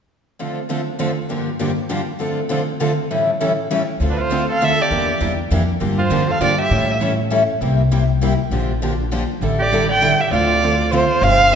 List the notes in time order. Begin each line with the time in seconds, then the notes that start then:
0.39 D3 F3 A3 C4 D4 F4 A4
0.70 D3 F3 A3 C4 D4 F4 A4
0.99 D3 F3 A3 C4 D4 F4 A4
1.30 G2 D3 F3 A#3 D4 G4
1.60 G2 D3 F3 A#3 D4 G4
1.90 G2 D3 F3 A#3 D4 G4
2.19 D3 F3 A3 C4 D4 F4 A4
2.49 D3 F3 A3 C4 D4 F4 A4
2.80 D3 F3 A3 C4 D4 F4 A4
3.11 A2 E3 G3 C#4 E4 A4
3.41 A2 E3 G3 C#4 E4 A4
3.71 A2 E3 G3 C#4 E4 A4
4.00 D2 D3 F3 A3 C4 D4 F4 A4
4.10 D4 B4
4.18 F4 C5
4.30 D3 F3 A3 C4 D4 F4 A4
4.48 A4
4.52 F5
4.61 D3 F3 A3 C4 D4 F4 A4 E5
4.81 G4 D5
4.90 E2 E3 G3 A#3 D4 E4 G4 A#4
5.20 E2 E3 G3 A#3 D4 E4 G4 A#4
5.50 F2 E3 G3 A#3 D4 E4 G4 A#4
5.80 G2 D3 F3 A#3 D4 G4
5.99 F4 C5
6.10 F2 D3 F3 A#3 D4 G4
6.28 A4 F5
6.40 G2 D3 F3 A#3 D4 F4 G4 D5
6.58 G4 E5
6.71 A2 E3 G3 C#4 E4 A4
7.00 E3 G3 C#4 E4 A4
7.31 E3 G3 C#4 E4 A4
7.61 C2 C3 G3 A#3 E4 G4
7.91 C3 G3 A#3 E4 G4
8.22 C3 G3 A#3 E4 G4
8.51 A#1 D3 F3 A#3 D4 G4
8.82 D3 F3 A#3 D4 G4
9.12 D3 F3 A#3 D4 G4
9.41 A1 D3 G3 D4 E4 A4
9.59 G4 D5
9.72 D3 G3 D4 E4 A4
9.89 D5 G5
10.03 D3 G3 D4 E4 A4
10.19 G4 E5
10.31 D2 D3 F3 A3 C4 D4 F4 A4 D5
10.62 D3 F3 A3 C4 D4 F4 A4
10.92 D3 F3 A3 C4 D4 F4 A4 C5
11.21 G1 C3 F3 C4 D4 G4 C5 F5
11.52 C3